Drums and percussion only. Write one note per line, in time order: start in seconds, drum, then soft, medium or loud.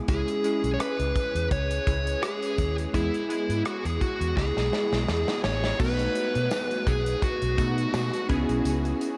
0.08 kick loud
0.08 closed hi-hat medium
0.28 closed hi-hat soft
0.44 closed hi-hat medium
0.64 closed hi-hat medium
0.80 cross-stick loud
0.80 closed hi-hat medium
1.00 closed hi-hat soft
1.16 kick medium
1.16 closed hi-hat medium
1.36 closed hi-hat medium
1.51 kick medium
1.51 closed hi-hat medium
1.71 closed hi-hat medium
1.87 kick medium
1.87 closed hi-hat medium
2.07 closed hi-hat soft
2.23 cross-stick medium
2.23 closed hi-hat medium
2.42 closed hi-hat medium
2.58 kick medium
2.58 closed hi-hat medium
2.78 closed hi-hat soft
2.94 kick loud
2.94 closed hi-hat medium
3.14 closed hi-hat soft
3.30 closed hi-hat medium
3.50 closed hi-hat medium
3.65 cross-stick loud
3.65 closed hi-hat medium
3.85 closed hi-hat soft
4.01 kick medium
4.01 closed hi-hat medium
4.21 closed hi-hat medium
4.37 kick medium
4.37 snare soft
4.57 snare soft
4.73 snare medium
4.93 snare medium
5.08 snare medium
5.28 snare medium
5.44 snare medium
5.64 snare medium
5.79 kick loud
5.79 crash medium
5.79 tambourine soft
5.99 closed hi-hat soft
6.15 closed hi-hat medium
6.15 tambourine soft
6.35 closed hi-hat medium
6.51 snare loud
6.51 tambourine medium
6.71 closed hi-hat medium
6.87 kick medium
6.87 closed hi-hat medium
6.87 tambourine soft
7.06 closed hi-hat medium
7.22 kick medium
7.22 closed hi-hat medium
7.42 closed hi-hat medium
7.58 kick loud
7.58 closed hi-hat medium
7.58 tambourine soft
7.78 closed hi-hat soft
7.94 snare loud
7.94 tambourine medium
8.14 closed hi-hat medium
8.29 kick loud
8.29 closed hi-hat medium
8.29 tambourine soft
8.49 closed hi-hat soft
8.65 closed hi-hat medium
8.65 tambourine soft
8.85 closed hi-hat soft
9.01 closed hi-hat medium
9.01 tambourine soft